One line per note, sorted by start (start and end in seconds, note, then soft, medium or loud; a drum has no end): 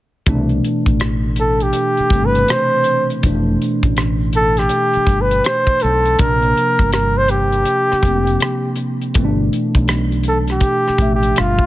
0.26 0.59 C2 loud
0.26 2.08 B2 medium
0.26 2.08 E3 medium
0.26 2.09 A3 medium
0.26 2.09 D4 medium
0.26 kick medium
0.26 closed hi-hat medium
0.49 closed hi-hat soft
0.65 closed hi-hat medium
0.86 1.71 A1 medium
0.86 kick medium
0.86 closed hi-hat soft
1.00 cross-stick medium
1.00 closed hi-hat medium
1.36 1.64 A4 medium
1.36 closed hi-hat medium
1.60 2.27 G4 medium
1.60 closed hi-hat soft
1.73 closed hi-hat medium
1.97 muted fretless electric bass stroke soft
1.97 closed hi-hat soft
2.10 2.43 G1 medium
2.10 3.23 C3 soft
2.10 3.22 E3 soft
2.10 3.23 A3 soft
2.10 3.24 C4 soft
2.10 kick medium
2.10 closed hi-hat medium
2.26 2.52 B4 medium
2.35 closed hi-hat soft
2.48 3.10 C5 medium
2.48 cross-stick loud
2.48 closed hi-hat medium
2.84 closed hi-hat medium
3.10 closed hi-hat soft
3.23 3.56 F1 loud
3.23 6.15 B2 medium
3.23 6.15 E3 medium
3.23 6.16 A3 medium
3.23 6.17 D4 medium
3.23 kick medium
3.23 closed hi-hat medium
3.62 closed hi-hat medium
3.83 4.67 A1 medium
3.83 kick medium
3.83 closed hi-hat soft
3.97 cross-stick medium
3.97 closed hi-hat medium
4.33 4.60 A4 medium
4.33 closed hi-hat medium
4.57 5.23 G4 medium
4.57 cross-stick soft
4.57 closed hi-hat soft
4.69 closed hi-hat medium
4.94 muted fretless electric bass stroke soft
4.94 closed hi-hat soft
5.07 5.40 G1 medium
5.07 kick medium
5.07 closed hi-hat medium
5.21 5.47 B4 medium
5.31 closed hi-hat soft
5.44 5.84 C5 medium
5.44 cross-stick loud
5.44 closed hi-hat medium
5.67 kick medium
5.80 6.21 A4 medium
5.80 closed hi-hat medium
5.84 6.15 B1 medium
6.06 closed hi-hat soft
6.19 6.52 A#1 medium
6.19 8.00 C3 medium
6.19 8.01 F3 soft
6.19 8.01 A#3 soft
6.19 8.02 D4 medium
6.19 6.93 A#4 loud
6.19 kick loud
6.19 closed hi-hat medium
6.42 closed hi-hat soft
6.57 closed hi-hat medium
6.79 7.64 G1 medium
6.79 kick medium
6.79 closed hi-hat soft
6.92 7.19 A#4 medium
6.92 cross-stick medium
6.92 closed hi-hat medium
7.17 7.32 C5 medium
7.28 8.78 G4 medium
7.28 closed hi-hat medium
7.53 closed hi-hat soft
7.65 closed hi-hat medium
7.92 muted fretless electric bass stroke soft
7.92 cross-stick soft
8.03 8.36 F1 medium
8.03 9.15 C3 soft
8.03 9.16 F3 soft
8.03 9.16 A#3 soft
8.03 9.16 C4 medium
8.03 kick medium
8.03 closed hi-hat medium
8.27 closed hi-hat soft
8.40 cross-stick loud
8.40 closed hi-hat medium
8.76 closed hi-hat medium
9.02 closed hi-hat soft
9.14 9.48 G1 loud
9.14 10.96 B2 medium
9.14 10.97 E3 medium
9.14 10.98 A3 medium
9.14 9.25 C4 medium
9.14 kick loud
9.14 closed hi-hat medium
9.25 11.01 D4 medium
9.53 closed hi-hat medium
9.75 10.60 B1 medium
9.75 kick medium
9.75 closed hi-hat soft
9.88 cross-stick medium
9.88 closed hi-hat medium
10.12 closed hi-hat soft
10.23 closed hi-hat medium
10.28 10.38 A4 medium
10.48 cross-stick soft
10.48 closed hi-hat soft
10.52 11.10 G4 medium
10.61 kick medium
10.61 closed hi-hat medium
10.88 muted fretless electric bass stroke soft
10.88 cross-stick soft
10.98 11.32 A1 medium
10.98 11.66 B2 soft
10.98 11.66 F3 soft
10.98 11.66 A3 soft
10.98 11.66 E5 medium
10.98 kick medium
10.98 closed hi-hat soft
11.15 11.41 G4 medium
11.23 closed hi-hat soft
11.36 11.59 G1 medium
11.36 11.66 F4 medium
11.36 cross-stick loud
11.36 closed hi-hat medium
11.59 kick medium